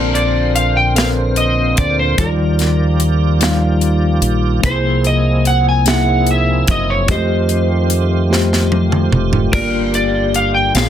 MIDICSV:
0, 0, Header, 1, 6, 480
1, 0, Start_track
1, 0, Key_signature, -2, "major"
1, 0, Tempo, 816327
1, 1285, Time_signature, 6, 3, 24, 8
1, 6403, End_track
2, 0, Start_track
2, 0, Title_t, "Electric slide guitar"
2, 0, Program_c, 0, 29
2, 0, Note_on_c, 0, 70, 77
2, 86, Note_on_c, 0, 74, 72
2, 98, Note_off_c, 0, 70, 0
2, 309, Note_off_c, 0, 74, 0
2, 326, Note_on_c, 0, 77, 80
2, 437, Note_off_c, 0, 77, 0
2, 452, Note_on_c, 0, 79, 77
2, 560, Note_off_c, 0, 79, 0
2, 565, Note_on_c, 0, 77, 81
2, 630, Note_off_c, 0, 77, 0
2, 808, Note_on_c, 0, 75, 71
2, 1045, Note_off_c, 0, 75, 0
2, 1048, Note_on_c, 0, 74, 75
2, 1158, Note_off_c, 0, 74, 0
2, 1172, Note_on_c, 0, 72, 62
2, 1281, Note_off_c, 0, 72, 0
2, 1288, Note_on_c, 0, 70, 67
2, 2463, Note_off_c, 0, 70, 0
2, 2737, Note_on_c, 0, 72, 88
2, 2954, Note_off_c, 0, 72, 0
2, 2980, Note_on_c, 0, 75, 77
2, 3196, Note_off_c, 0, 75, 0
2, 3218, Note_on_c, 0, 78, 86
2, 3335, Note_off_c, 0, 78, 0
2, 3343, Note_on_c, 0, 80, 72
2, 3446, Note_off_c, 0, 80, 0
2, 3458, Note_on_c, 0, 78, 84
2, 3698, Note_off_c, 0, 78, 0
2, 3708, Note_on_c, 0, 76, 69
2, 3943, Note_off_c, 0, 76, 0
2, 3946, Note_on_c, 0, 75, 78
2, 4058, Note_on_c, 0, 73, 64
2, 4059, Note_off_c, 0, 75, 0
2, 4163, Note_off_c, 0, 73, 0
2, 4182, Note_on_c, 0, 72, 75
2, 5349, Note_off_c, 0, 72, 0
2, 5603, Note_on_c, 0, 70, 82
2, 5826, Note_off_c, 0, 70, 0
2, 5851, Note_on_c, 0, 74, 75
2, 6070, Note_off_c, 0, 74, 0
2, 6090, Note_on_c, 0, 77, 78
2, 6198, Note_off_c, 0, 77, 0
2, 6200, Note_on_c, 0, 79, 79
2, 6313, Note_off_c, 0, 79, 0
2, 6323, Note_on_c, 0, 77, 82
2, 6403, Note_off_c, 0, 77, 0
2, 6403, End_track
3, 0, Start_track
3, 0, Title_t, "Tine electric piano"
3, 0, Program_c, 1, 4
3, 0, Control_c, 1, 64, 127
3, 0, Note_on_c, 1, 46, 55
3, 0, Note_on_c, 1, 60, 61
3, 0, Note_on_c, 1, 70, 58
3, 0, Note_on_c, 1, 74, 72
3, 0, Note_on_c, 1, 81, 56
3, 437, Note_off_c, 1, 60, 0
3, 439, Note_off_c, 1, 81, 0
3, 443, Note_off_c, 1, 70, 0
3, 444, Note_off_c, 1, 74, 0
3, 540, Note_off_c, 1, 46, 0
3, 556, Note_on_c, 1, 60, 54
3, 562, Note_on_c, 1, 69, 53
3, 569, Note_on_c, 1, 70, 50
3, 572, Note_on_c, 1, 71, 48
3, 607, Note_off_c, 1, 71, 0
3, 610, Note_on_c, 1, 72, 66
3, 1158, Note_off_c, 1, 60, 0
3, 1161, Note_off_c, 1, 69, 0
3, 1165, Note_off_c, 1, 70, 0
3, 1185, Note_off_c, 1, 72, 0
3, 1278, Note_on_c, 1, 55, 62
3, 1284, Note_on_c, 1, 51, 53
3, 1284, Note_on_c, 1, 63, 59
3, 1289, Note_on_c, 1, 65, 58
3, 1293, Control_c, 1, 64, 0
3, 1293, Note_on_c, 1, 73, 58
3, 1328, Note_off_c, 1, 73, 0
3, 1332, Note_on_c, 1, 74, 70
3, 1394, Control_c, 1, 64, 127
3, 1879, Note_off_c, 1, 55, 0
3, 1882, Note_off_c, 1, 63, 0
3, 1885, Note_off_c, 1, 65, 0
3, 1906, Note_off_c, 1, 74, 0
3, 1981, Note_off_c, 1, 51, 0
3, 2002, Note_on_c, 1, 55, 69
3, 2006, Note_on_c, 1, 63, 59
3, 2010, Note_on_c, 1, 65, 63
3, 2019, Note_on_c, 1, 77, 81
3, 2601, Note_off_c, 1, 55, 0
3, 2603, Note_off_c, 1, 63, 0
3, 2605, Note_off_c, 1, 65, 0
3, 2609, Note_off_c, 1, 77, 0
3, 2718, Note_on_c, 1, 58, 67
3, 2722, Note_on_c, 1, 63, 49
3, 2726, Note_on_c, 1, 48, 52
3, 2731, Note_on_c, 1, 68, 63
3, 2733, Control_c, 1, 64, 0
3, 2735, Note_on_c, 1, 72, 75
3, 2761, Note_on_c, 1, 64, 61
3, 2762, Note_off_c, 1, 63, 0
3, 2835, Control_c, 1, 64, 127
3, 3319, Note_off_c, 1, 58, 0
3, 3325, Note_off_c, 1, 68, 0
3, 3327, Note_off_c, 1, 72, 0
3, 3340, Note_off_c, 1, 64, 0
3, 3422, Note_off_c, 1, 48, 0
3, 3440, Note_on_c, 1, 58, 57
3, 3447, Note_on_c, 1, 63, 44
3, 3451, Note_on_c, 1, 68, 53
3, 3454, Note_on_c, 1, 76, 63
3, 3484, Note_off_c, 1, 63, 0
3, 3484, Note_on_c, 1, 64, 53
3, 4039, Note_off_c, 1, 58, 0
3, 4045, Note_off_c, 1, 68, 0
3, 4046, Note_off_c, 1, 76, 0
3, 4061, Note_off_c, 1, 64, 0
3, 4165, Note_on_c, 1, 56, 53
3, 4167, Note_on_c, 1, 65, 60
3, 4172, Control_c, 1, 64, 0
3, 4174, Note_on_c, 1, 67, 63
3, 4180, Note_on_c, 1, 75, 79
3, 4203, Note_off_c, 1, 56, 0
3, 4203, Note_on_c, 1, 57, 67
3, 4269, Control_c, 1, 64, 127
3, 4762, Note_off_c, 1, 65, 0
3, 4766, Note_off_c, 1, 67, 0
3, 4769, Note_off_c, 1, 75, 0
3, 4780, Note_off_c, 1, 57, 0
3, 4880, Note_on_c, 1, 57, 69
3, 4885, Note_on_c, 1, 65, 62
3, 4891, Note_on_c, 1, 67, 63
3, 4894, Note_on_c, 1, 72, 69
3, 5478, Note_off_c, 1, 57, 0
3, 5481, Note_off_c, 1, 65, 0
3, 5484, Note_off_c, 1, 67, 0
3, 5486, Note_off_c, 1, 72, 0
3, 5595, Note_on_c, 1, 57, 49
3, 5600, Note_on_c, 1, 43, 52
3, 5600, Note_on_c, 1, 65, 58
3, 5604, Note_on_c, 1, 67, 56
3, 5610, Control_c, 1, 64, 0
3, 5610, Note_on_c, 1, 74, 73
3, 5631, Note_on_c, 1, 58, 66
3, 5637, Note_off_c, 1, 57, 0
3, 5713, Control_c, 1, 64, 127
3, 6198, Note_off_c, 1, 65, 0
3, 6200, Note_off_c, 1, 67, 0
3, 6203, Note_off_c, 1, 74, 0
3, 6214, Note_off_c, 1, 58, 0
3, 6297, Note_off_c, 1, 43, 0
3, 6318, Note_on_c, 1, 58, 57
3, 6322, Note_on_c, 1, 65, 54
3, 6324, Note_on_c, 1, 46, 56
3, 6326, Note_on_c, 1, 68, 55
3, 6330, Control_c, 1, 64, 0
3, 6332, Note_on_c, 1, 73, 47
3, 6365, Note_off_c, 1, 73, 0
3, 6372, Note_on_c, 1, 77, 67
3, 6403, Note_off_c, 1, 46, 0
3, 6403, Note_off_c, 1, 58, 0
3, 6403, Note_off_c, 1, 65, 0
3, 6403, Note_off_c, 1, 68, 0
3, 6403, Note_off_c, 1, 77, 0
3, 6403, End_track
4, 0, Start_track
4, 0, Title_t, "Tonewheel organ"
4, 0, Program_c, 2, 16
4, 0, Note_on_c, 2, 50, 49
4, 0, Note_on_c, 2, 58, 49
4, 0, Note_on_c, 2, 60, 49
4, 0, Note_on_c, 2, 65, 48
4, 0, Note_on_c, 2, 72, 61
4, 1272, Note_off_c, 2, 50, 0
4, 1273, Note_off_c, 2, 60, 0
4, 1273, Note_off_c, 2, 65, 0
4, 1274, Note_off_c, 2, 72, 0
4, 1282, Note_on_c, 2, 53, 53
4, 1283, Note_on_c, 2, 65, 48
4, 1283, Note_on_c, 2, 67, 60
4, 1287, Note_on_c, 2, 74, 48
4, 2710, Note_off_c, 2, 65, 0
4, 2710, Note_off_c, 2, 67, 0
4, 2712, Note_off_c, 2, 74, 0
4, 2724, Note_on_c, 2, 64, 50
4, 2724, Note_on_c, 2, 68, 60
4, 2726, Note_on_c, 2, 60, 48
4, 4139, Note_off_c, 2, 53, 0
4, 4145, Note_off_c, 2, 58, 0
4, 4149, Note_off_c, 2, 64, 0
4, 4149, Note_off_c, 2, 68, 0
4, 4165, Note_on_c, 2, 57, 52
4, 4165, Note_on_c, 2, 65, 51
4, 4168, Note_on_c, 2, 51, 54
4, 4171, Note_on_c, 2, 67, 62
4, 5580, Note_off_c, 2, 60, 0
4, 5589, Note_off_c, 2, 57, 0
4, 5591, Note_off_c, 2, 51, 0
4, 5600, Note_on_c, 2, 58, 52
4, 5602, Note_on_c, 2, 55, 47
4, 5605, Note_on_c, 2, 50, 57
4, 6304, Note_off_c, 2, 67, 0
4, 6314, Note_off_c, 2, 55, 0
4, 6314, Note_off_c, 2, 58, 0
4, 6325, Note_on_c, 2, 56, 53
4, 6325, Note_on_c, 2, 58, 51
4, 6327, Note_on_c, 2, 68, 65
4, 6403, Note_off_c, 2, 50, 0
4, 6403, Note_off_c, 2, 56, 0
4, 6403, Note_off_c, 2, 58, 0
4, 6403, Note_off_c, 2, 65, 0
4, 6403, Note_off_c, 2, 68, 0
4, 6403, End_track
5, 0, Start_track
5, 0, Title_t, "Fingered electric bass"
5, 0, Program_c, 3, 33
5, 0, Note_on_c, 3, 34, 83
5, 1023, Note_off_c, 3, 34, 0
5, 1046, Note_on_c, 3, 38, 73
5, 1267, Note_off_c, 3, 38, 0
5, 2478, Note_on_c, 3, 34, 76
5, 2702, Note_off_c, 3, 34, 0
5, 2724, Note_on_c, 3, 36, 80
5, 3900, Note_off_c, 3, 36, 0
5, 3929, Note_on_c, 3, 30, 73
5, 4148, Note_off_c, 3, 30, 0
5, 4165, Note_on_c, 3, 41, 91
5, 5340, Note_off_c, 3, 41, 0
5, 5361, Note_on_c, 3, 29, 71
5, 5583, Note_off_c, 3, 29, 0
5, 5601, Note_on_c, 3, 31, 83
5, 6298, Note_off_c, 3, 31, 0
5, 6319, Note_on_c, 3, 34, 77
5, 6403, Note_off_c, 3, 34, 0
5, 6403, End_track
6, 0, Start_track
6, 0, Title_t, "Drums"
6, 90, Note_on_c, 9, 42, 42
6, 148, Note_off_c, 9, 42, 0
6, 327, Note_on_c, 9, 42, 58
6, 386, Note_off_c, 9, 42, 0
6, 566, Note_on_c, 9, 42, 81
6, 578, Note_on_c, 9, 38, 95
6, 625, Note_off_c, 9, 42, 0
6, 637, Note_off_c, 9, 38, 0
6, 801, Note_on_c, 9, 42, 42
6, 860, Note_off_c, 9, 42, 0
6, 1041, Note_on_c, 9, 42, 59
6, 1046, Note_on_c, 9, 36, 87
6, 1100, Note_off_c, 9, 42, 0
6, 1105, Note_off_c, 9, 36, 0
6, 1283, Note_on_c, 9, 36, 89
6, 1283, Note_on_c, 9, 42, 74
6, 1342, Note_off_c, 9, 36, 0
6, 1342, Note_off_c, 9, 42, 0
6, 1523, Note_on_c, 9, 42, 41
6, 1532, Note_on_c, 9, 38, 30
6, 1582, Note_off_c, 9, 42, 0
6, 1590, Note_off_c, 9, 38, 0
6, 1763, Note_on_c, 9, 42, 59
6, 1822, Note_off_c, 9, 42, 0
6, 2004, Note_on_c, 9, 42, 86
6, 2015, Note_on_c, 9, 38, 99
6, 2062, Note_off_c, 9, 42, 0
6, 2074, Note_off_c, 9, 38, 0
6, 2242, Note_on_c, 9, 42, 40
6, 2301, Note_off_c, 9, 42, 0
6, 2481, Note_on_c, 9, 42, 64
6, 2540, Note_off_c, 9, 42, 0
6, 2725, Note_on_c, 9, 36, 93
6, 2725, Note_on_c, 9, 42, 65
6, 2784, Note_off_c, 9, 36, 0
6, 2784, Note_off_c, 9, 42, 0
6, 2966, Note_on_c, 9, 42, 38
6, 3025, Note_off_c, 9, 42, 0
6, 3207, Note_on_c, 9, 42, 60
6, 3265, Note_off_c, 9, 42, 0
6, 3444, Note_on_c, 9, 42, 86
6, 3456, Note_on_c, 9, 38, 94
6, 3503, Note_off_c, 9, 42, 0
6, 3515, Note_off_c, 9, 38, 0
6, 3684, Note_on_c, 9, 42, 40
6, 3743, Note_off_c, 9, 42, 0
6, 3925, Note_on_c, 9, 42, 58
6, 3929, Note_on_c, 9, 36, 87
6, 3983, Note_off_c, 9, 42, 0
6, 3988, Note_off_c, 9, 36, 0
6, 4164, Note_on_c, 9, 42, 75
6, 4166, Note_on_c, 9, 36, 99
6, 4223, Note_off_c, 9, 42, 0
6, 4225, Note_off_c, 9, 36, 0
6, 4404, Note_on_c, 9, 42, 45
6, 4463, Note_off_c, 9, 42, 0
6, 4645, Note_on_c, 9, 42, 59
6, 4703, Note_off_c, 9, 42, 0
6, 4897, Note_on_c, 9, 38, 51
6, 4956, Note_off_c, 9, 38, 0
6, 5016, Note_on_c, 9, 38, 45
6, 5075, Note_off_c, 9, 38, 0
6, 5126, Note_on_c, 9, 48, 60
6, 5185, Note_off_c, 9, 48, 0
6, 5247, Note_on_c, 9, 47, 53
6, 5305, Note_off_c, 9, 47, 0
6, 5366, Note_on_c, 9, 45, 72
6, 5424, Note_off_c, 9, 45, 0
6, 5485, Note_on_c, 9, 43, 71
6, 5544, Note_off_c, 9, 43, 0
6, 5604, Note_on_c, 9, 36, 98
6, 5607, Note_on_c, 9, 49, 62
6, 5663, Note_off_c, 9, 36, 0
6, 5665, Note_off_c, 9, 49, 0
6, 5844, Note_on_c, 9, 42, 42
6, 5903, Note_off_c, 9, 42, 0
6, 6082, Note_on_c, 9, 42, 58
6, 6141, Note_off_c, 9, 42, 0
6, 6320, Note_on_c, 9, 42, 82
6, 6332, Note_on_c, 9, 38, 101
6, 6379, Note_off_c, 9, 42, 0
6, 6391, Note_off_c, 9, 38, 0
6, 6403, End_track
0, 0, End_of_file